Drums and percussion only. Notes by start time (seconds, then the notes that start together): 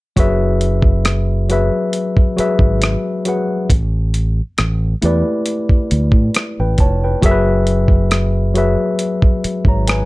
0.17 kick, closed hi-hat
0.61 closed hi-hat
0.82 kick
1.05 cross-stick, closed hi-hat
1.50 closed hi-hat
1.93 closed hi-hat
2.17 kick
2.38 closed hi-hat
2.59 kick
2.82 cross-stick, closed hi-hat
3.25 closed hi-hat
3.70 kick, closed hi-hat
4.14 closed hi-hat
4.58 cross-stick, closed hi-hat
5.02 closed hi-hat
5.46 closed hi-hat
5.69 kick
5.91 closed hi-hat
6.12 kick
6.34 cross-stick, closed hi-hat
6.78 kick, closed hi-hat
7.22 kick, closed hi-hat
7.67 closed hi-hat
7.88 kick
8.11 cross-stick, closed hi-hat
8.55 closed hi-hat
8.99 closed hi-hat
9.22 kick
9.44 closed hi-hat
9.65 kick
9.87 cross-stick, closed hi-hat